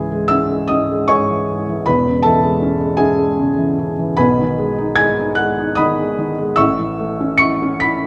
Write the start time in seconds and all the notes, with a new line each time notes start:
Already playing: C#2 G#2 E3 G#4 E5 G#5
0.11 G#3
0.28 C#4 E5 E6
0.51 G#3
0.68 C#4 D#5 D#6
0.91 G#3
1.08 G#2 C#5 G#5 C#6
1.30 E3
1.51 G#2
1.69 E3
1.86 E1 E2 B4 B5
2.07 C#3
2.23 E3 A4 A5
2.43 G#3
2.62 C#4
2.80 G#3
2.97 C#4 G#4 E5 G#5
3.20 G#3
3.39 C#3
3.58 E3
3.79 C#3
3.99 E3
4.17 B1 B2 B4 G#5 B5
4.39 D#3
4.58 G#3
4.78 D#4
4.96 G#3 G#5 G#6
5.19 D#4
5.35 G#3 F#5 F#6
5.59 D#4
5.75 D#3 D#5 B5 D#6
6.00 G#3
6.19 D#3
6.38 G#3
6.56 A1 A2 E5 C#6 E6
6.79 E3
6.99 A3
7.20 C#4
7.38 E4 C#6 C#7
7.62 C#4
7.80 E4 B5 B6